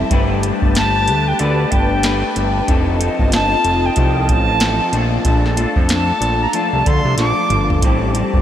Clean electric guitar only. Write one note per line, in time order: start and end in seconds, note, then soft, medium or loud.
0.00 0.10 G3 medium
0.00 0.11 C4 medium
0.00 0.11 E4 medium
0.00 0.13 A4 medium
0.10 1.39 G3 medium
0.10 1.39 A3 medium
0.10 1.39 D4 medium
0.10 1.40 G4 medium
0.10 1.41 B4 medium
1.39 2.03 A3 medium
1.39 2.03 D4 medium
1.39 2.04 G4 medium
1.39 2.04 B4 medium
2.03 2.68 A3 medium
2.03 2.68 D4 medium
2.03 2.69 G4 medium
2.03 2.69 B4 medium
2.67 3.00 F3 medium
2.67 3.00 C4 medium
2.67 3.00 D#4 loud
2.67 2.98 A4 medium
2.99 3.96 C4 soft
2.99 3.97 D#4 medium
2.99 3.98 A4 medium
3.96 4.60 F3 medium
3.96 4.60 C4 medium
3.96 4.61 D#4 medium
3.96 4.63 A4 medium
4.61 4.93 F3 medium
4.61 4.93 C4 medium
4.61 4.93 D#4 medium
4.61 4.92 A4 medium
4.93 5.58 A#2 medium
4.93 5.58 F3 medium
4.93 5.59 A3 medium
4.93 5.57 D4 medium
4.93 5.56 F4 medium
5.57 6.54 A3 soft
5.57 6.54 D4 soft
5.57 6.53 F4 medium
6.53 7.17 F3 medium
6.53 7.19 A3 medium
6.53 7.18 D4 medium
6.53 7.19 F4 medium
7.18 7.82 F3 medium
7.18 7.84 A3 medium
7.18 7.83 D4 medium
7.18 7.84 F4 medium
7.83 8.15 A2 medium
7.83 8.15 E3 medium
7.83 8.15 G3 medium
7.83 8.15 C4 medium
7.83 8.13 G4 medium
8.14 8.42 G3 soft
8.14 8.42 C4 medium
8.14 8.42 G4 medium